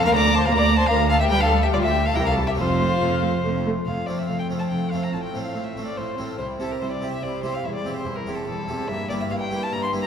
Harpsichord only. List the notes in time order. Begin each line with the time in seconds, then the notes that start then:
0.01 A#3 F4
0.05 D2
0.47 D2
0.89 D2
1.28 D2 F4 G4
1.73 D2
2.13 C2 E4 G4
2.54 A3 C4 F4
2.58 F2
3.02 F2
3.45 F2
3.87 F2
4.08 F2 A3 C4 F4
4.30 F2
4.50 F2 A3 C4 F4
4.71 F2
4.92 F2 A3 C4 F4
5.13 A2
5.34 A2 A3 C4 F4
5.56 A2
5.77 A2 A3 C4 F4
5.98 A2
6.18 A2 A3 C4 F4
6.39 C3
6.60 C3 E4 G4
6.80 C3
7.01 C3 E4 G4
7.23 C3
7.43 C3 E4 G4
7.64 E2
7.85 E2 E4 G4
8.05 E2
8.26 E2 E4 G4
8.48 E2
8.68 E2 E4 G4
8.90 G2
9.10 G2 A#3 E4 G4
9.30 G2
9.51 G2 A#3 E4 G4
9.72 G2
9.93 G2 A#3 E4 G4